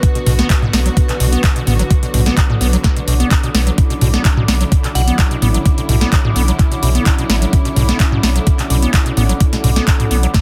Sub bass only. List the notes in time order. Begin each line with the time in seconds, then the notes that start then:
0.27 B1
0.73 B1
1.20 B1
1.67 A1
2.14 B1
2.61 B1
3.08 B1
3.55 B1
4.01 B1
4.48 B1
4.95 B1
5.42 A1
5.89 B1
6.36 B1
6.83 B1
7.30 A1
7.76 B1
8.23 B1
8.70 B1
9.17 A1
9.64 B1
10.11 B1